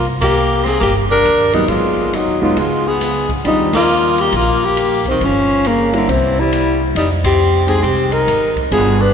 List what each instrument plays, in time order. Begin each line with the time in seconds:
Already playing: upright bass C2
0.21 tenor saxophone A#3, alto saxophone G4, kick, ride
0.38 hi-hat pedal
0.65 tenor saxophone C4, alto saxophone G#4, snare, ride
0.80 upright bass G1, tenor saxophone A#3, alto saxophone G4, kick, ride
1.10 tenor saxophone D4, alto saxophone A#4
1.25 upright bass D#2, hi-hat pedal, ride
1.53 grand piano F#3 A#3 B3 D#4, tenor saxophone G3, alto saxophone D#4, ride
1.67 upright bass G#1, tenor saxophone G#3, alto saxophone F4, kick, ride
2.13 tenor saxophone F#3, alto saxophone D#4, hi-hat pedal, ride
2.27 upright bass D#2
2.42 upright bass G#2, tenor saxophone F#3, grand piano G#3 B3 D#4 F4, alto saxophone D#4
2.57 upright bass C#2, tenor saxophone G#3, alto saxophone F4, kick, ride
2.87 tenor saxophone B3, alto saxophone G#4
3.01 snare, hi-hat pedal, ride
3.29 kick, ride
3.44 upright bass D#2, grand piano G3 C4 D4 F4, tenor saxophone G3, alto saxophone D#4, kick, ride
3.73 tenor saxophone A#3, alto saxophone F4, snare, ride
3.89 hi-hat pedal
4.18 tenor saxophone A#3, alto saxophone G4, ride
4.32 upright bass A#1, alto saxophone F4, kick, ride
4.38 tenor saxophone A#3
4.65 tenor saxophone A#3, alto saxophone G4
4.77 hi-hat pedal, ride
5.05 alto saxophone C4, kick, ride
5.11 tenor saxophone D#3
5.20 upright bass G1, alto saxophone C#4, kick, ride
5.25 tenor saxophone F3
5.65 alto saxophone A#3, hi-hat pedal, ride
5.69 tenor saxophone C#3
5.93 grand piano G3 A#3 C#4 E4, alto saxophone A#3, ride
5.97 tenor saxophone D3
6.08 upright bass C2, tenor saxophone E3, alto saxophone C4, kick, ride
6.39 tenor saxophone G3, alto saxophone E4
6.53 hi-hat pedal, ride
6.95 upright bass F2, tenor saxophone G3, alto saxophone D#4, kick, ride
7.24 tenor saxophone C4, alto saxophone G4, kick, ride
7.39 hi-hat pedal
7.67 grand piano G#3 C4 D#4 G4, tenor saxophone C4, alto saxophone G#4, ride
7.82 upright bass C2, tenor saxophone C4, alto saxophone G4, kick, ride
8.12 tenor saxophone D#4, alto saxophone A#4, ride
8.27 upright bass G#1, hi-hat pedal, ride
8.56 kick, ride
8.71 upright bass G1, grand piano B3 D4 F4 G#4, tenor saxophone B3, alto saxophone G#4, kick, ride
9.00 tenor saxophone D4, alto saxophone B4